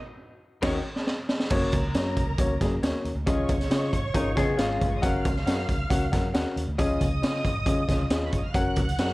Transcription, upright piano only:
0.62 D#3 C#4 F#4 D#5
1.51 A#3 C#4 F#4 C#5
1.95 A#3 C#4 F#4 C#5
2.39 A#3 C#4 F#4 C#5
2.62 A#3 C#4 F#4 G#4
2.83 A#3 C#4 F#4 C#5
3.26 C#3 C#4 F4 G#4 D#5
3.70 C#4 F4 G#4 D#5
4.14 C#4 F4 G#4 A#4
4.35 C#4 F4 G#4 D#5
4.57 C#4 F4 G#4 F5
5.02 C#4 F#4 A#4 F#5
5.46 C#4 F#4 A#4 F#5
5.90 C#4 F#4 A#4 F#5
6.12 C#4 F#4 A#4 F#5
6.34 C#4 F#4 A#4 F#5
6.78 C#3 C#4 F4 G#4 D#5
7.22 C#4 F4 G#4 D#5
7.66 C#4 F4 G#4 D#5
7.88 C#4 F4 G#4 D#5
8.11 C#4 F4 G#4 D#5
8.54 C#4 F#4 A#4 F#5
8.99 C#4 F#4 A#4 F#5

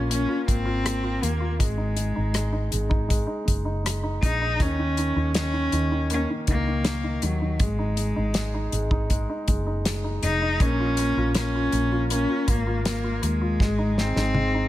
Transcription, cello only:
0.12 C#4
0.49 C4
1.24 A#3
1.61 G#3
4.23 D#4
4.62 C#4
5.38 C#4
6.14 C#4
6.50 A#3
7.26 F#3
7.64 G#3
10.24 D#4
10.62 C#4
11.38 C#4
12.12 C#4
12.51 A#3
12.88 A#3
13.25 G#3
14.00 C4

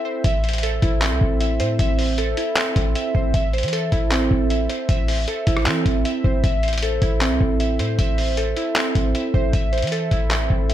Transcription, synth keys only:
Already playing: C4 E4 A4 E5
0.05 C5
0.24 E5
0.44 C5
0.63 A4
0.82 E4
1.02 C4
1.41 E5
1.60 C5
1.79 E5
1.99 C5
2.18 A4
2.37 E4
2.57 C4
2.96 E5
3.15 C5
3.34 E5
3.53 C5
3.73 A4
3.92 E4
4.11 C4
4.50 E5
4.70 C5
4.89 E5
5.08 C5
5.28 A4
5.47 E4
5.66 C4
6.05 E5
6.24 C5
6.44 E5
6.63 C5
6.83 A4
7.02 E4
7.21 C4
7.60 E5
7.79 C5
7.99 E5
8.18 C5
8.38 A4
8.57 E4
8.76 C4
9.15 E5
9.34 C5
9.53 E5
9.73 C5
9.92 A4
10.11 E4
10.31 C4
10.69 E5

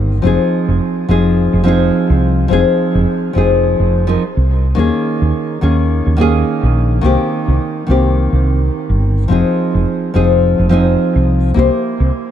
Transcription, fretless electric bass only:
Already playing: G1
0.24 F1
0.68 F1
1.09 F1
1.53 F1
2.10 C2
2.50 F1
2.95 F1
3.36 F1
3.80 F1
4.37 C2
4.78 D#2
5.22 D#2
5.62 D#2
6.06 D#2
6.63 A#1
7.04 C2
7.48 C2
7.89 C2
8.32 C2
8.89 G1
9.30 F1
9.74 F1
10.15 F1
10.59 F1
11.16 C2
11.56 C2
12.00 C2

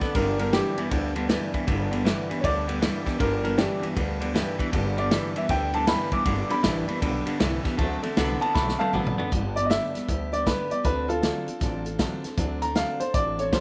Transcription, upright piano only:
Already playing: D5
0.15 A#4
0.40 A#4
0.53 G4
2.40 C#5
2.44 D5
3.20 A#4
3.44 A#4
3.58 D4 G4
4.98 D5
5.37 E5
5.50 G5
5.74 A5
5.88 B5
6.13 D6
6.51 B5
8.41 A5
8.54 B5
8.79 F5 A5
9.56 D5
9.65 D#5
9.70 E5
10.33 D5
10.47 B4
10.71 D5
10.85 B4
11.08 F4 A4
12.62 A#5
12.76 F5
13.00 C5
13.14 D5
13.39 C#5
13.52 C5

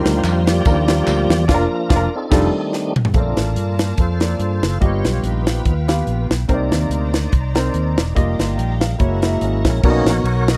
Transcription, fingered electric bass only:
0.05 D2
0.24 F2
0.66 D#2
1.07 D2
1.30 E2
1.49 F1
1.90 F1
2.31 F1
3.14 A#1
3.37 A1
3.56 G2
3.98 F2
4.39 G2
4.63 F#1
4.81 G1
5.05 B1
5.23 A#1
5.65 D#2
6.07 A#1
6.30 B1
6.49 C2
6.72 D#2
6.90 D2
7.33 C2
7.74 D#2
7.98 E1
8.16 F1
8.39 G1
8.58 A#1
9.00 F#1
9.41 G#1
9.64 A#1
9.84 B1
10.06 A#1
10.24 B1

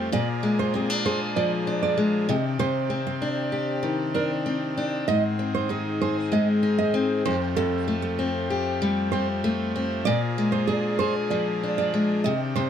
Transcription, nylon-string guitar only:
0.13 D5
0.59 C5
0.75 G#4
1.06 C5
1.36 D5
1.83 D5
2.29 D#5
2.60 C5
3.07 C5
4.15 A#4
5.08 D#5
5.55 C5
5.70 G#4
6.01 C5
6.33 D#5
6.79 D#5
7.25 C5
7.56 A4
8.02 A4
9.12 C5
10.05 D5
10.52 C5
10.67 G#4
10.99 C5
11.30 D5
11.78 D5
12.24 D#5
12.56 C5

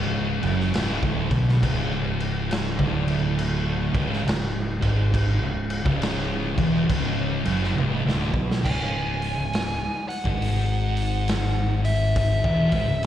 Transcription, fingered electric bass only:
Already playing: C#1
0.43 F#1
0.75 C#1
1.03 D1
1.31 B1
1.63 C#1
2.79 D1
3.94 C#1
4.25 C#1
4.82 G#1
5.42 C#1
5.85 C#1
6.57 E1
6.89 C#1
7.46 F#1
7.78 C#1
8.05 D1
8.34 B1
8.65 C#1
9.38 C#1
10.25 G#1
12.44 E1
12.72 G#1
12.88 C#1

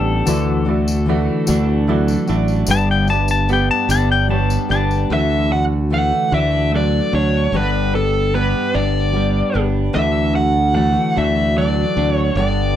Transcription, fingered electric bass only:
Already playing: A1
0.27 D2
1.49 D2
2.29 A1
2.68 G1
3.89 G1
4.70 G1
5.10 D2
6.32 D2
7.13 D2
7.52 G1
8.75 G1
9.55 G1
9.96 D2
11.17 D2
11.97 D2
12.35 G1

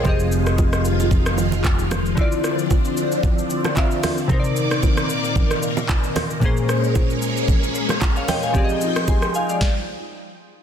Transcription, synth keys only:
Already playing: C5
0.03 F3 C4 G4
0.07 G#4 D#5
2.15 D3 C4 E4
2.19 F4 D5
3.76 D3 C4 F4 E5 F5
4.28 C3 C4 D#4
4.32 A#4 C5
4.40 D5
6.40 A#2 A#3 C#4
6.44 G#4 C5
8.17 C#5 F5
8.29 D#5 G5
8.43 F5 G#5
8.52 F3 C4 G4
8.57 G#4 D5
8.64 D#5
9.08 G#5 C6
9.35 F5 G#5
9.50 D5 F5

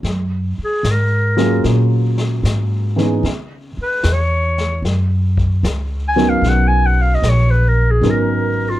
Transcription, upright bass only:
0.03 F#2
0.58 muted upright bass stroke
0.83 G#2
1.64 A#2
2.43 G#2
3.23 C#3
3.77 muted upright bass stroke
4.04 E2
4.82 F#2
5.63 C#2
6.42 B1
7.22 A#1
8.01 G#1

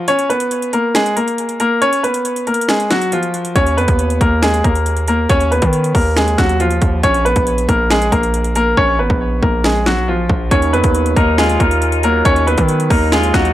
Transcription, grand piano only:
0.08 C#4 C#5
0.30 B3 B4
0.73 A#3 A#4
0.95 G#3 G#4
1.16 A#3 A#4
1.60 A#3 A#4
1.82 C#4 C#5
2.03 B3 B4
2.47 A#3 A#4
2.69 G#3 G#4
2.91 F#3 F#4
3.12 F3 F4
3.56 C#4 C#5
3.77 B3 B4
4.21 A#3 A#4
4.43 G#3 G#4
4.65 A#3 A#4
5.08 A#3 A#4
5.30 C#4 C#5
5.51 B3 B4
5.95 A#3 A#4
6.17 G#3 G#4
6.38 F#3 F#4
6.60 F3 F4
7.04 C#4 C#5
7.25 B3 B4
7.69 A#3 A#4
7.91 G#3 G#4
8.12 A#3 A#4
8.56 A#3 A#4
8.77 C#4 C#5
8.99 B3 B4
9.43 A#3 A#4
9.64 G#3 G#4
9.86 F#3 F#4
10.08 F3 F4
10.51 C#4 C#5
10.73 B3 B4
11.17 A#3 A#4
11.38 G#3 G#4
11.60 A#3 A#4
12.04 A#3 A#4
12.25 C#4 C#5
12.47 B3 B4
12.90 A#3 A#4
13.12 G#3 G#4
13.34 F#3 F#4

